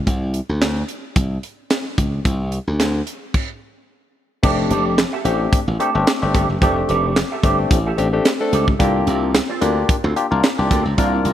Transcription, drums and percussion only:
0.07 kick loud
0.07 closed hi-hat medium
0.34 closed hi-hat medium
0.62 snare loud
0.62 clap medium
0.62 closed hi-hat medium
0.88 closed hi-hat medium
1.16 kick loud
1.16 closed hi-hat loud
1.43 closed hi-hat medium
1.70 snare medium
1.70 clap medium
1.70 closed hi-hat medium
1.98 kick medium
1.98 closed hi-hat medium
2.25 kick loud
2.25 closed hi-hat medium
2.52 closed hi-hat medium
2.80 snare medium
2.80 clap medium
2.80 closed hi-hat medium
3.07 closed hi-hat medium
3.34 kick loud
3.34 crash medium
4.43 kick loud
4.43 crash loud
4.71 closed hi-hat medium
4.98 snare loud
4.98 clap medium
4.98 closed hi-hat loud
5.25 closed hi-hat medium
5.53 kick loud
5.53 closed hi-hat loud
5.80 closed hi-hat medium
6.07 snare loud
6.07 clap medium
6.07 closed hi-hat loud
6.35 kick loud
6.35 closed hi-hat medium
6.62 kick loud
6.62 closed hi-hat medium
6.89 closed hi-hat medium
7.16 snare loud
7.16 clap medium
7.16 closed hi-hat medium
7.43 kick loud
7.43 closed hi-hat medium
7.71 kick loud
7.71 closed hi-hat loud
7.98 closed hi-hat medium
8.25 snare loud
8.25 clap medium
8.25 closed hi-hat loud
8.53 closed hi-hat medium
8.68 kick medium
8.80 kick loud
8.80 closed hi-hat medium
9.07 closed hi-hat medium
9.35 snare loud
9.35 clap medium
9.35 closed hi-hat loud
9.62 closed hi-hat loud
9.89 kick loud
9.89 closed hi-hat loud
10.16 closed hi-hat medium
10.43 snare loud
10.43 clap medium
10.43 closed hi-hat medium
10.71 kick loud
10.71 closed hi-hat medium
10.98 kick loud
10.98 closed hi-hat medium
11.25 closed hi-hat medium

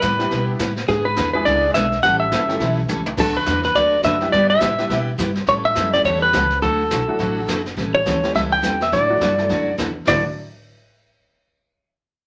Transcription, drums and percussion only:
0.02 kick soft
0.02 snare medium
0.02 hi-hat pedal medium
0.19 snare soft
0.31 brush sweep soft
0.31 kick soft
0.31 snare soft
0.59 kick soft
0.59 snare medium
0.59 hi-hat pedal medium
0.76 snare soft
0.88 brush sweep soft
0.88 kick soft
0.88 snare soft
1.16 kick soft
1.16 snare medium
1.16 hi-hat pedal medium
1.46 brush sweep soft
1.46 kick soft
1.46 snare soft
1.74 kick soft
1.74 snare medium
1.74 hi-hat pedal medium
1.92 snare soft
2.03 brush sweep soft
2.03 kick soft
2.03 snare soft
2.32 kick soft
2.32 snare medium
2.32 hi-hat pedal medium
2.49 snare soft
2.60 brush sweep medium
2.60 kick soft
2.60 snare soft
2.89 hi-hat pedal medium
2.89 high tom medium
3.06 high tom medium
3.18 brush sweep soft
3.18 kick medium
3.18 snare soft
3.18 crash medium
3.46 kick soft
3.46 snare medium
3.46 hi-hat pedal medium
3.63 snare soft
3.75 brush sweep medium
3.75 kick soft
3.75 snare soft
4.03 kick soft
4.03 snare medium
4.03 hi-hat pedal medium
4.20 snare soft
4.32 brush sweep soft
4.32 kick soft
4.32 snare soft
4.60 kick soft
4.60 snare medium
4.60 hi-hat pedal medium
4.78 snare soft
4.90 brush sweep medium
4.90 kick soft
4.90 snare medium
5.18 kick soft
5.18 snare medium
5.18 hi-hat pedal medium
5.35 snare soft
5.47 brush sweep soft
5.47 kick soft
5.47 snare soft
5.75 kick soft
5.75 snare medium
5.75 hi-hat pedal medium
5.93 snare soft
6.04 brush sweep soft
6.04 kick soft
6.04 snare soft
6.33 kick soft
6.33 snare medium
6.33 hi-hat pedal medium
6.50 snare soft
6.62 brush sweep soft
6.62 kick soft
6.62 snare soft
6.91 kick soft
6.91 snare medium
6.91 hi-hat pedal medium
7.19 brush sweep medium
7.19 kick soft
7.19 snare soft
7.48 kick soft
7.48 snare medium
7.48 hi-hat pedal medium
7.66 snare soft
7.77 brush sweep soft
7.77 kick soft
7.77 snare soft
8.06 kick soft
8.06 snare medium
8.06 hi-hat pedal medium
8.23 snare soft
8.35 brush sweep medium
8.35 kick soft
8.35 snare soft
8.63 kick soft
8.63 snare medium
8.63 hi-hat pedal medium
8.81 snare soft
8.92 brush sweep soft
8.92 kick soft
8.92 snare soft
9.21 kick soft
9.21 snare medium
9.21 hi-hat pedal medium
9.38 snare soft
9.50 brush sweep soft
9.50 kick soft
9.50 snare soft
9.78 kick soft
9.78 snare medium
9.78 hi-hat pedal medium
10.07 snare medium
10.07 floor tom medium
10.07 open hi-hat medium

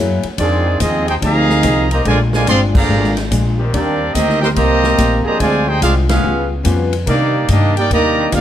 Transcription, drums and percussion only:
0.23 ride medium
0.38 kick soft
0.38 ride medium
0.80 kick soft
0.80 hi-hat pedal medium
0.80 ride medium
1.08 ride medium
1.22 kick soft
1.22 ride medium
1.50 snare medium
1.63 kick soft
1.63 hi-hat pedal medium
1.63 ride medium
1.91 ride medium
2.05 kick soft
2.05 ride medium
2.33 snare medium
2.47 kick soft
2.47 hi-hat pedal medium
2.47 ride medium
2.75 kick loud
2.75 crash medium
3.04 snare soft
3.17 snare medium
3.17 ride medium
3.31 kick soft
3.31 hi-hat pedal medium
3.31 ride medium
3.73 kick soft
3.73 ride medium
4.15 kick soft
4.15 hi-hat pedal medium
4.15 ride medium
4.29 snare soft
4.43 snare medium
4.56 kick soft
4.56 ride medium
4.83 snare medium
4.98 kick soft
4.98 hi-hat pedal medium
4.98 ride medium
5.40 kick soft
5.40 ride medium
5.82 kick soft
5.82 hi-hat pedal medium
5.82 ride medium
6.09 snare medium
6.09 ride medium
6.65 kick soft
6.65 hi-hat pedal medium
6.65 ride medium
6.93 ride medium
7.07 kick soft
7.07 ride medium
7.48 kick soft
7.48 hi-hat pedal medium
7.48 ride medium
7.77 ride medium
7.91 kick soft
7.91 ride medium
8.32 kick soft
8.32 hi-hat pedal medium
8.32 ride medium

